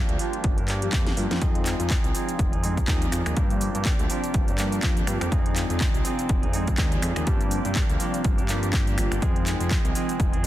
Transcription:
Already playing: F3 G3 A#3 D4 F4 G4
0.09 D2, closed hi-hat
0.19 F3 G3 A#3 D4 F4 G4, open hi-hat
0.33 closed hi-hat
0.44 G1 F3 G3 A#3 D4 F4, kick, closed hi-hat
0.57 G2 A#3 D4 G4, closed hi-hat
0.68 F3 A#3 D4 G4, clap, open hi-hat
0.82 F3 G3 A#3 D4 G4, closed hi-hat
0.92 F2 F3 A#3, kick, clap, closed hi-hat
1.06 A#3 D4 G4, snare, closed hi-hat
1.17 G2 F3 G3 A#3 D4 F4, open hi-hat
1.30 F2 A#3 D4 G4, snare, closed hi-hat
1.41 F2 F3 G#3 C4 D#4 F4 G#4 D5, kick, closed hi-hat, shaker
1.55 closed hi-hat
1.66 clap, open hi-hat, shaker
1.79 F2 D#4 G#4, closed hi-hat, shaker
1.90 C4 D#4, kick, clap, closed hi-hat, shaker
2.04 C2, closed hi-hat, shaker
2.14 F3 G#3 C4 D#4 F4 G#4, open hi-hat, shaker
2.29 closed hi-hat, shaker
2.38 F1 F3 G#3 C4 D#4 F4, kick, closed hi-hat, shaker
2.52 F2 D#4 G#4, closed hi-hat
2.63 F3 G#3 C4 D#4 F4 G#4, open hi-hat, shaker
2.77 G#4, kick, closed hi-hat, shaker
2.87 D#2 C4 D#4 G#4, kick, clap, closed hi-hat, shaker
3.01 D#4 G#4, closed hi-hat, shaker
3.12 F2 F3 G#3 C4 D#4 F4, finger snap, open hi-hat, shaker
3.26 D#2 D#4 G#4, finger snap, closed hi-hat, shaker
3.36 G2 F3 G3 A#3 D4 F4 G4, kick, closed hi-hat, shaker
3.50 closed hi-hat, shaker
3.61 open hi-hat, shaker
3.74 G2 A#3 D4 G4, closed hi-hat, shaker
3.85 F3 A#3 D4, kick, clap, closed hi-hat, shaker
3.99 D2, closed hi-hat, shaker
4.09 F3 G3 A#3 D4 F4 G4, open hi-hat, shaker
4.24 closed hi-hat, shaker
4.34 G1 F3 G3 A#3 D4 F4, kick, closed hi-hat, shaker
4.47 G2 A#3 D4 G4, closed hi-hat, shaker
4.58 F3 G3 A#3 D4 F4 G4, clap, open hi-hat, shaker
4.72 closed hi-hat, shaker
4.82 F2 F3 A#3 D4 G4, kick, clap, closed hi-hat, shaker
4.96 A#3 D4 G4, closed hi-hat, shaker
5.07 G2 F3 G3 A#3 D4 F4, finger snap, open hi-hat, shaker
5.21 F2 A#3 D4 G4, finger snap, closed hi-hat, shaker
5.31 F2 F3 G#3 C4 D#4 F4 G#4, kick, closed hi-hat, shaker
5.46 closed hi-hat
5.56 clap, open hi-hat, shaker
5.69 F2 D#4 G#4, closed hi-hat, shaker
5.80 C4 D#4, kick, clap, closed hi-hat, shaker
5.94 C2, closed hi-hat, shaker
6.04 F3 G#3 C4 D#4 F4 G#4, open hi-hat, shaker
6.19 closed hi-hat, shaker
6.29 F1 F3 G#3 C4 D#4 F4, kick, closed hi-hat, shaker
6.43 F2 D#4 G#4, closed hi-hat
6.53 F3 G#3 C4 D#4 F4 G#4, open hi-hat, shaker
6.67 kick, closed hi-hat, shaker
6.78 D#2 C4 D#4 G#4, kick, clap, closed hi-hat, shaker
6.92 D#4 G#4, closed hi-hat, shaker
7.02 F2 F3 G#3 C4 D#4 F4, finger snap, open hi-hat, shaker
7.16 D#2 D#4 G#4, finger snap, closed hi-hat, shaker
7.26 G2 F3 G3 A#3 D4 F4 G4, kick, closed hi-hat, shaker
7.41 closed hi-hat, shaker
7.51 open hi-hat, shaker
7.65 G2 A#3 D4 G4, closed hi-hat, shaker
7.75 F3 A#3 D4 G4, kick, clap, closed hi-hat, shaker
7.89 D2, closed hi-hat, shaker
7.99 F3 G3 A#3 D4 F4 G4, open hi-hat, shaker
8.14 closed hi-hat, shaker
8.24 G1 F3 G3 A#3 D4 F4, kick, closed hi-hat, shaker
8.38 G2 A#3 D4 G4, closed hi-hat, shaker
8.48 F3 G3 A#3 D4 F4 G4, clap, open hi-hat, shaker
8.63 closed hi-hat, shaker
8.73 F3 A#3 D4 G4, kick, clap, closed hi-hat, shaker
8.86 A#3 D4 G4, closed hi-hat, shaker
8.97 G1 F3 G3 A#3 D4 F4, finger snap, open hi-hat, shaker
9.11 G1 A#3 D4 G4, finger snap, closed hi-hat, shaker
9.21 F2 D#3 F3 G#3 C4 D#4 F4 G#4 C5, kick, closed hi-hat, shaker
9.36 closed hi-hat
9.46 clap, open hi-hat, shaker
9.60 F2 G#3 C4 G#4, closed hi-hat, shaker
9.70 D#3 G#3 G#4, kick, clap, closed hi-hat, shaker
9.85 C2, closed hi-hat, shaker
9.94 D#3 F3 G#3 C4 D#4 F4 G#4, open hi-hat, shaker
10.09 closed hi-hat, shaker
10.19 F1 F3 G#3 C4 D#4 F4, kick, closed hi-hat, shaker
10.33 F2 G#3 C4 G#4, closed hi-hat
10.43 D#3 F3

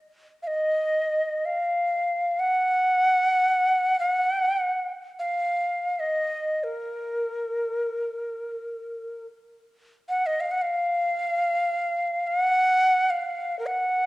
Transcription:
0.43 F5
0.47 D#5
1.45 F5
2.40 F#5
4.00 F#5
5.19 F5
6.00 D#5
6.63 A#4
10.09 F#5
10.26 D#5
10.40 F5
10.51 F#5
10.62 F5
12.27 F5
12.38 F#5
13.10 F5
13.59 A#4
13.67 F#5

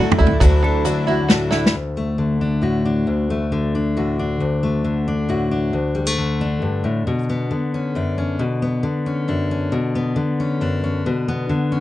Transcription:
Already playing: D2 E2 D3 F#3 A3 D4 E4 F#4 D5
0.00 E4
0.12 mid tom
0.18 D2 A3 D4 E4 F#4 D5
0.27 floor tom
0.40 D2 D3 F#3 A3 D4 E4 F#4, kick, closed hi-hat
0.63 D4 A4
0.85 D3 F#3 A3 D4 E4 F#4, closed hi-hat
1.07 E4 F#4
1.28 A2 F#3 A3 D4 E4 F#4, snare, closed hi-hat
1.51 A3 D4 E4, snare
1.66 snare
1.74 D2
1.97 A3
2.18 D3
2.41 D4
2.62 A2 F#4
2.85 D4
3.07 D2
3.30 A3
3.52 D3
3.75 D4
3.97 A2 F#4
4.19 D4
4.40 D2
4.63 A3
4.84 D3
5.08 D4
5.29 A2 F#4
5.51 D4
5.73 D2
5.95 G3
6.06 A3
6.18 D3
6.41 D4
6.62 G2
6.84 A2
7.07 B2
7.29 B3
7.51 D3
7.74 C#4
7.95 F#2 D4
8.18 C#4
8.39 B2
8.62 B3
8.83 D3
9.06 C#4
9.28 F#2 D4
9.51 C#4
9.72 B2
9.95 B3
10.16 D3
10.40 C#4
10.61 F#2 D4
10.84 C#4
11.06 B2
11.28 B3
11.49 D3
11.72 C#4

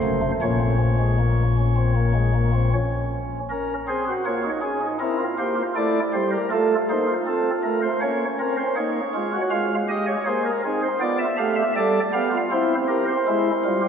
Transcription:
Already playing: A3 C5
0.03 F#1 F#2 A#3
0.22 A3
0.42 A#1 A#2 A#3 C#4 C#5
0.61 C4
0.81 C#4
0.99 G#3
1.19 A#3
1.58 C#4
1.77 C4
1.96 A#3
2.15 G#3
2.34 A#3
2.53 C4
2.74 C#4
3.50 C#4 A#4
3.88 C4 G#4 C5
4.07 F#4
4.26 A#3 F4 C#5
4.44 D#4
4.62 C#4 G#4
4.81 D#4
5.00 C4 E4 A#4
5.19 F4
5.39 A#3 G4 C5
5.56 F4
5.76 A3 E4 D5
6.13 G3 G4 C5
6.32 A#4
6.51 A3 F4 A4
6.90 A#3 D#4 C5
7.08 F4
7.27 C4 A4
7.63 A3 A#4
7.83 C5
8.01 A#3 C#4 C#5
8.40 C4 A#4
8.57 C5
8.76 A#3 D#4 C#5
9.14 G#3 F4
9.33 F#4
9.51 G#3 F4 F5
9.89 G4 D#5
10.07 C#5
10.26 A#3 G#4 C5
10.45 A#4
10.64 C4 D#4 G#4
10.83 C5
11.00 B3 F4 D5
11.19 E5
11.38 A3 G4 F5
11.56 E5
11.76 G3 A4 D5
12.13 B3 G4 F5
12.32 F4
12.51 C4 E4 C5
12.88 G4 A#4
13.08 C5
13.27 G#3 E4
13.65 G3 F4
13.82 G4

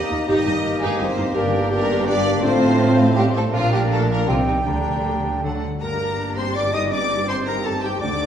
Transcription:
Already playing: D#3 G3 A#3 D#4 G4 D#5 G5 A#5
0.02 A#4
0.10 D#2 A#3 D#4 G4
0.20 D#4
0.27 G1 G2 A#3 D#4 G4 D#5
0.37 G3
0.45 G1 G2 A#3 D#4
0.55 D#4
0.63 G1 G2 A#3 D#4
0.72 A#4
0.81 G1 G2 G#3 D#4 G4 G#4 D#5
0.91 G5
0.97 G1 G2 C4 D#4 A#4 C5
1.08 G4
1.17 G1 G2 A#3 D#4
1.27 A#3
1.34 G1 G2 A#3 D4 G4 A#4 D5 G5
1.44 D3
1.53 D4
1.62 D3
1.70 A#3 G4 A#4 D5
1.80 D5
1.89 G4
1.97 G5
2.06 A#3 D4 G4 D5
2.16 G4
2.34 D3
2.42 A1 A2 A3 C4 F4 C5 F5
2.52 A3
2.62 C4
2.70 F4
2.79 C5
2.89 F4
2.98 F5
3.07 C6
3.16 G3 G4 C5
3.25 F4
3.34 A3 C4 A4
3.44 A3
3.52 A#1 A#2 F3 A#3 D4 F4 A#4 D5 F5
3.63 F3
3.70 G3 A#3 G4
3.81 D4
3.89 A3 A4 D5
3.99 A#4
4.08 A#3 A#4 D5
4.18 D6
4.26 C2 C3 F3 G3 C4 F4 G4 G5
4.36 C4
4.45 D#3 G3 D#4
4.56 G4
4.66 D2 D3 G3 A#3 D4 A#5
4.76 D4
4.86 G3
4.96 G4
5.06 A#4
5.16 G4
5.25 G5
5.35 A#5
5.43 D3 F#3 A3 D4 A4 F#5 A5
5.54 D4
5.63 A3
5.74 F#4
5.81 G1 G2 A#3 D4 G4 A#4 A#5
5.92 A#3
6.01 D4
6.10 G4
6.19 A#4
6.28 D5
6.37 C4 C5 G5 C6
6.47 D5
6.55 D4 A#4 D5 D6
6.65 G4
6.73 D4 D#4 D#5 D#6
6.83 A#3
6.91 G2 C4 D4 D5 D6
7.02 C4
7.12 D#4
7.20 G4
7.28 C4 C5 C6
7.38 D#5
7.45 A#3 A#4 G5 A#5
7.56 D#5
7.64 A3 A4 C5 A5
7.75 G4
7.83 G3 D#4 G4 G5
7.93 C4
8.01 D2 D3 A3 D4 F#4 D5 D6
8.11 D4
8.21 F#4

